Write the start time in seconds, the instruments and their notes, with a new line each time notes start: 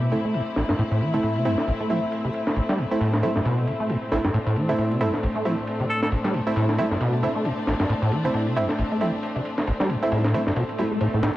Already playing: string section A2 A3 C4 E4, acid bass B2
0.02 ride
0.12 acid bass D3, synth stab A3 C4 E4, ride
0.25 acid bass A3
0.34 acid bass A2, ride
0.56 acid bass A1, snare, ride
0.69 acid bass G2, snare
0.79 acid bass A2, ride
0.91 acid bass A2, ride
1.01 acid bass E3, ride
1.14 acid bass B2, synth stab A3 C4 E4
1.23 acid bass A2, ride
1.36 acid bass C3, ride
1.45 acid bass G2, synth stab A3 C4 E4, ride
1.58 snare
1.67 acid bass A1, ride
1.80 acid bass A3, ride
1.89 acid bass E3, synth stab A3 C4 E4, ride
2.02 ride
2.12 ride
2.25 acid bass C3, ride
2.34 ride
2.47 snare
2.56 acid bass A1, ride
2.69 acid bass G3, snare
2.78 acid bass A2, ride
2.91 synth stab A3 C4 E4
3.00 acid bass A2, ride
3.13 snare
3.23 acid bass A3, synth stab A3 C4 E4, ride
3.36 acid bass G2, snare
3.45 acid bass B2, ride
3.58 ride
3.67 acid bass D3, ride
3.80 acid bass A3
3.89 acid bass A2, ride
4.12 acid bass A1, synth stab A3 C4 E4, snare, ride
4.24 acid bass G2, snare
4.34 acid bass A2, string section D4, ride
4.46 acid bass A2, ride
4.56 acid bass E3, ride
4.68 acid bass B2, synth stab A3 C4 E4
4.78 acid bass A2, ride
4.91 acid bass C3, ride
5.00 acid bass G2, synth stab A3 C4 E4, ride
5.14 snare
5.23 acid bass A1, ride
5.35 acid bass A3, ride
5.45 acid bass E3, synth stab A3 C4 E4, ride
5.58 ride
5.67 ride
5.80 acid bass C3, ride
5.90 alto saxophone A4, ride
6.02 alto saxophone A4, snare
6.12 acid bass A1, ride
6.24 acid bass G3, snare
6.34 acid bass A2, ride
6.47 synth stab A3 C4 E4
6.56 acid bass A2, ride
6.69 snare
6.78 acid bass A3, synth stab A3 C4 E4, ride
6.91 acid bass G2, snare
7.01 acid bass B2, ride
7.13 ride
7.23 acid bass D3, synth stab A3 C4 E4, ride
7.35 acid bass A3
7.45 acid bass A2, ride
7.67 acid bass A1, snare, ride
7.80 acid bass G2, snare
7.89 acid bass A2, ride
8.02 acid bass A2, ride
8.12 acid bass E3, ride
8.24 acid bass B2, synth stab A3 C4 E4
8.34 acid bass A2, ride
8.47 acid bass C3, ride
8.56 acid bass G2, synth stab A3 C4 E4, ride
8.69 snare
8.78 acid bass A1, ride
8.91 acid bass A3, ride
9.01 acid bass E3, synth stab A3 C4 E4, ride
9.13 ride
9.23 ride
9.36 acid bass C3, ride
9.45 ride
9.58 snare
9.67 acid bass A1, ride
9.80 acid bass G3, snare
9.90 acid bass A2, ride
10.03 synth stab A3 C4 E4
10.12 acid bass A2, ride
10.24 snare
10.34 acid bass A3, synth stab A3 C4 E4, ride
10.47 acid bass G2, snare
10.56 acid bass B2, ride, swell
10.69 ride
10.78 acid bass G3, synth stab A3 C4 E4, ride
10.91 acid bass A3
11.01 acid bass A2, ride
11.14 acid bass A2
11.23 acid bass A2, snare, ride